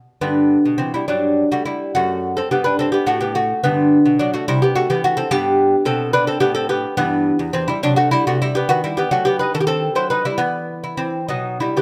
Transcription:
0.21 G2 D3 B3
0.65 B2
0.78 E3 C4
0.94 G3 E4
1.08 G2 F#3 D4
1.52 G3 A3 F#4
1.65 G3 E4
1.95 F#2 A3 F#4
2.37 C4 A4
2.51 G2 B3 G4
2.64 D4 B4
2.79 C4 A4
2.92 B3 G4
3.06 A2 A3 F#4
3.20 B3 G4
3.35 A3 F#4
3.64 G2 D3 B3
4.06 B2
4.19 F#3 D4
4.34 A3 F#4
4.48 C3 G3 E4
4.62 B3 G4
4.75 A3 F#4
4.90 E3 B3 G4
5.04 A3 F#4
5.17 C4 A4
5.31 G2 B3 G4
5.85 B2 C4 A4
6.13 D4 B4
6.27 C4 A4
6.40 A2 B3 G4
6.55 C4 A4
6.69 B3 G4
6.97 G2 E3 B3
7.39 E2
7.53 E3 C4
7.68 G3 E4
7.83 C3 F#3 D4
7.96 A3 F#4
8.11 G3 E4
8.27 C3 A3 F#4
8.42 G3 E4
8.55 B3 G4
8.69 D#3 B3 F#4
8.84 G3 E4
8.97 B3 G4
9.11 F#3 A3 F#4
9.25 B3 G4
9.39 D#4 B4
9.54 D#3 A4
9.60 G4
9.67 C4 A4
9.95 F#3 E4 C5
10.10 D#4 B4
10.25 G3 E4
10.38 E3 B3
10.84 E4
10.97 E3 C4
11.29 B2 F#3 D#4
11.60 G3 E4
11.77 D#3 B3 G4

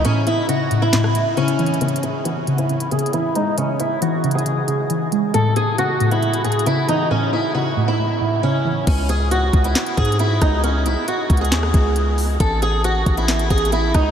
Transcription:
Already playing: C#3 E3
0.05 A2 C#4, closed hi-hat
0.27 E4, closed hi-hat
0.49 C#3 F#4, closed hi-hat
0.71 A2, closed hi-hat
0.82 E4
0.93 A2, snare, clap, closed hi-hat
1.04 cross-stick
1.15 A2, closed hi-hat
1.37 C#3 C#4, closed hi-hat
1.48 closed hi-hat
1.59 E3, closed hi-hat, open hi-hat
1.66 closed hi-hat
1.74 closed hi-hat
1.81 C#3 C#4, closed hi-hat
1.88 closed hi-hat
1.96 closed hi-hat
2.03 G#4, closed hi-hat
2.25 E3 F#4, closed hi-hat
2.47 C#3, closed hi-hat
2.58 E4, closed hi-hat
2.69 C#3, closed hi-hat
2.80 closed hi-hat
2.91 C#3 G#4, closed hi-hat
2.99 closed hi-hat
3.06 closed hi-hat
3.13 E3 E4, closed hi-hat
3.35 G#3 D#4, closed hi-hat
3.58 C#3 C#4, closed hi-hat
3.80 E4, closed hi-hat
4.02 E3 F#4, closed hi-hat
4.24 C#3, closed hi-hat
4.31 G#4, closed hi-hat
4.39 closed hi-hat
4.46 C#3, closed hi-hat
4.68 C#3, closed hi-hat
4.90 E3, closed hi-hat
5.12 G#3, closed hi-hat
5.34 A2 A4, closed hi-hat
5.56 G#4, closed hi-hat
5.78 C#3 F#4, closed hi-hat
6.00 A2, closed hi-hat
6.11 E4, closed hi-hat
6.22 A2, closed hi-hat
6.33 closed hi-hat
6.44 A2 G#4, closed hi-hat
6.52 closed hi-hat
6.59 closed hi-hat
6.66 C#3 E4, closed hi-hat
6.89 E3 D#4, closed hi-hat
7.11 A2 C#4
7.33 E4
7.54 C#3 F#4
7.77 A2
7.88 E4
7.99 A2
8.21 A2
8.43 C#3 C#4
8.65 E3
8.87 C#2 C#4, kick, closed hi-hat, crash
9.09 G#4, closed hi-hat
9.31 F#4, closed hi-hat
9.53 C#2, kick, closed hi-hat
9.64 E4, closed hi-hat
9.75 snare, clap, closed hi-hat
9.86 closed hi-hat
9.97 G#2 G#4, kick, closed hi-hat
10.05 closed hi-hat
10.12 closed hi-hat
10.19 E4, closed hi-hat
10.41 C#2 D#4, kick, cross-stick, closed hi-hat
10.64 C#4, closed hi-hat
10.86 C2 E4, closed hi-hat
11.08 F#4, closed hi-hat
11.30 C#2, kick, closed hi-hat
11.37 G#4, closed hi-hat
11.45 closed hi-hat
11.52 D#2, snare, clap, closed hi-hat
11.63 cross-stick
11.74 C#2, kick, closed hi-hat
11.96 closed hi-hat
12.18 open hi-hat
12.40 A1 A4, kick, closed hi-hat
12.62 G#4, closed hi-hat
12.84 F#4, closed hi-hat
13.06 A1, kick, closed hi-hat
13.17 E4, closed hi-hat
13.28 snare, clap, closed hi-hat
13.39 closed hi-hat
13.50 A1 G#4, kick, closed hi-hat
13.58 closed hi-hat
13.65 closed hi-hat
13.72 E4, closed hi-hat
13.94 C#2 D#4, kick, cross-stick, closed hi-hat

